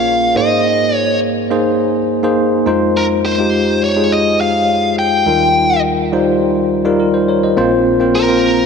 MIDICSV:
0, 0, Header, 1, 3, 480
1, 0, Start_track
1, 0, Key_signature, -4, "major"
1, 0, Tempo, 576923
1, 540, Time_signature, 4, 2, 24, 8
1, 7204, End_track
2, 0, Start_track
2, 0, Title_t, "Lead electric guitar"
2, 0, Program_c, 0, 29
2, 0, Note_on_c, 0, 77, 98
2, 306, Note_off_c, 0, 77, 0
2, 310, Note_on_c, 0, 75, 84
2, 801, Note_off_c, 0, 75, 0
2, 801, Note_on_c, 0, 73, 84
2, 992, Note_off_c, 0, 73, 0
2, 2471, Note_on_c, 0, 70, 88
2, 2534, Note_off_c, 0, 70, 0
2, 2711, Note_on_c, 0, 72, 89
2, 3191, Note_off_c, 0, 72, 0
2, 3195, Note_on_c, 0, 73, 87
2, 3431, Note_on_c, 0, 75, 94
2, 3434, Note_off_c, 0, 73, 0
2, 3663, Note_off_c, 0, 75, 0
2, 3666, Note_on_c, 0, 77, 103
2, 4110, Note_off_c, 0, 77, 0
2, 4150, Note_on_c, 0, 79, 89
2, 4832, Note_off_c, 0, 79, 0
2, 6782, Note_on_c, 0, 70, 88
2, 7204, Note_off_c, 0, 70, 0
2, 7204, End_track
3, 0, Start_track
3, 0, Title_t, "Tine electric piano"
3, 0, Program_c, 1, 4
3, 0, Control_c, 1, 64, 127
3, 0, Note_on_c, 1, 34, 62
3, 0, Note_on_c, 1, 46, 65
3, 0, Note_on_c, 1, 58, 63
3, 0, Note_on_c, 1, 61, 61
3, 0, Note_on_c, 1, 65, 60
3, 0, Note_on_c, 1, 68, 74
3, 0, Note_on_c, 1, 70, 70
3, 0, Note_on_c, 1, 73, 82
3, 105, Note_off_c, 1, 58, 0
3, 107, Note_off_c, 1, 61, 0
3, 108, Note_off_c, 1, 65, 0
3, 110, Note_off_c, 1, 70, 0
3, 266, Note_off_c, 1, 34, 0
3, 267, Note_off_c, 1, 46, 0
3, 290, Note_on_c, 1, 58, 75
3, 294, Note_on_c, 1, 63, 66
3, 296, Note_on_c, 1, 44, 62
3, 297, Note_off_c, 1, 68, 0
3, 297, Note_on_c, 1, 68, 67
3, 301, Note_on_c, 1, 72, 82
3, 309, Control_c, 1, 64, 0
3, 314, Note_off_c, 1, 73, 0
3, 469, Control_c, 1, 64, 127
3, 1063, Note_off_c, 1, 58, 0
3, 1065, Note_off_c, 1, 63, 0
3, 1067, Note_off_c, 1, 68, 0
3, 1068, Note_off_c, 1, 72, 0
3, 1252, Note_on_c, 1, 58, 89
3, 1255, Note_on_c, 1, 63, 77
3, 1258, Note_on_c, 1, 68, 83
3, 1261, Note_on_c, 1, 72, 99
3, 1662, Note_off_c, 1, 58, 0
3, 1663, Note_off_c, 1, 63, 0
3, 1664, Note_off_c, 1, 68, 0
3, 1666, Note_off_c, 1, 72, 0
3, 1855, Note_on_c, 1, 58, 83
3, 1857, Note_on_c, 1, 63, 80
3, 1863, Note_on_c, 1, 68, 77
3, 1866, Note_on_c, 1, 72, 93
3, 2184, Note_off_c, 1, 44, 0
3, 2207, Note_off_c, 1, 63, 0
3, 2213, Note_on_c, 1, 56, 86
3, 2214, Note_off_c, 1, 72, 0
3, 2217, Note_on_c, 1, 63, 88
3, 2218, Note_off_c, 1, 58, 0
3, 2218, Note_on_c, 1, 41, 74
3, 2221, Note_on_c, 1, 65, 78
3, 2222, Note_off_c, 1, 68, 0
3, 2224, Note_on_c, 1, 72, 99
3, 2232, Control_c, 1, 64, 0
3, 2357, Control_c, 1, 64, 127
3, 2697, Note_off_c, 1, 56, 0
3, 2699, Note_off_c, 1, 63, 0
3, 2700, Note_off_c, 1, 65, 0
3, 2702, Note_off_c, 1, 72, 0
3, 2816, Note_on_c, 1, 56, 74
3, 2819, Note_on_c, 1, 63, 69
3, 2822, Note_on_c, 1, 65, 68
3, 2825, Note_on_c, 1, 67, 83
3, 3143, Note_off_c, 1, 56, 0
3, 3144, Note_off_c, 1, 63, 0
3, 3146, Note_off_c, 1, 65, 0
3, 3147, Note_off_c, 1, 67, 0
3, 3294, Note_on_c, 1, 56, 69
3, 3296, Note_on_c, 1, 63, 61
3, 3299, Note_on_c, 1, 65, 63
3, 3302, Note_on_c, 1, 68, 77
3, 3946, Note_off_c, 1, 56, 0
3, 3947, Note_off_c, 1, 63, 0
3, 3949, Note_off_c, 1, 65, 0
3, 3950, Note_off_c, 1, 68, 0
3, 4106, Note_off_c, 1, 41, 0
3, 4376, Note_on_c, 1, 55, 75
3, 4380, Note_on_c, 1, 63, 69
3, 4381, Note_on_c, 1, 39, 64
3, 4381, Note_on_c, 1, 51, 67
3, 4382, Note_on_c, 1, 65, 72
3, 4386, Note_on_c, 1, 70, 80
3, 4389, Control_c, 1, 64, 0
3, 4518, Control_c, 1, 64, 127
3, 4865, Note_off_c, 1, 55, 0
3, 4867, Note_off_c, 1, 63, 0
3, 4868, Note_off_c, 1, 65, 0
3, 4870, Note_off_c, 1, 70, 0
3, 5095, Note_on_c, 1, 55, 90
3, 5100, Note_on_c, 1, 63, 83
3, 5102, Note_on_c, 1, 65, 82
3, 5106, Note_on_c, 1, 72, 96
3, 5503, Note_off_c, 1, 55, 0
3, 5506, Note_off_c, 1, 63, 0
3, 5507, Note_off_c, 1, 65, 0
3, 5509, Note_off_c, 1, 72, 0
3, 5698, Note_on_c, 1, 55, 86
3, 5700, Note_on_c, 1, 63, 75
3, 5704, Note_on_c, 1, 65, 78
3, 5707, Note_on_c, 1, 70, 91
3, 5811, Note_off_c, 1, 70, 0
3, 5821, Note_on_c, 1, 70, 63
3, 5826, Note_on_c, 1, 67, 52
3, 5934, Note_off_c, 1, 70, 0
3, 5937, Note_off_c, 1, 67, 0
3, 5940, Note_on_c, 1, 72, 75
3, 6054, Note_off_c, 1, 72, 0
3, 6061, Note_on_c, 1, 73, 68
3, 6066, Note_on_c, 1, 70, 58
3, 6105, Note_off_c, 1, 55, 0
3, 6106, Note_off_c, 1, 63, 0
3, 6108, Note_off_c, 1, 65, 0
3, 6175, Note_off_c, 1, 73, 0
3, 6177, Note_off_c, 1, 70, 0
3, 6185, Note_on_c, 1, 75, 62
3, 6189, Note_on_c, 1, 72, 55
3, 6267, Note_off_c, 1, 39, 0
3, 6267, Note_off_c, 1, 51, 0
3, 6297, Note_on_c, 1, 58, 93
3, 6298, Note_off_c, 1, 72, 0
3, 6301, Note_on_c, 1, 60, 89
3, 6302, Note_on_c, 1, 34, 75
3, 6302, Note_on_c, 1, 46, 81
3, 6303, Note_on_c, 1, 65, 82
3, 6308, Note_on_c, 1, 72, 105
3, 6312, Control_c, 1, 64, 0
3, 6411, Note_off_c, 1, 75, 0
3, 6455, Control_c, 1, 64, 127
3, 6542, Note_off_c, 1, 58, 0
3, 6544, Note_off_c, 1, 60, 0
3, 6545, Note_off_c, 1, 65, 0
3, 6547, Note_off_c, 1, 72, 0
3, 6655, Note_on_c, 1, 58, 75
3, 6657, Note_on_c, 1, 60, 69
3, 6661, Note_on_c, 1, 65, 68
3, 6665, Note_on_c, 1, 72, 83
3, 6820, Note_off_c, 1, 58, 0
3, 6821, Note_off_c, 1, 60, 0
3, 6823, Note_off_c, 1, 65, 0
3, 6825, Note_off_c, 1, 72, 0
3, 6893, Note_on_c, 1, 58, 71
3, 6895, Note_on_c, 1, 60, 64
3, 6899, Note_on_c, 1, 65, 65
3, 6902, Note_on_c, 1, 72, 76
3, 7140, Note_off_c, 1, 58, 0
3, 7141, Note_off_c, 1, 60, 0
3, 7143, Note_off_c, 1, 65, 0
3, 7144, Note_off_c, 1, 72, 0
3, 7204, Note_off_c, 1, 34, 0
3, 7204, Note_off_c, 1, 46, 0
3, 7204, End_track
0, 0, End_of_file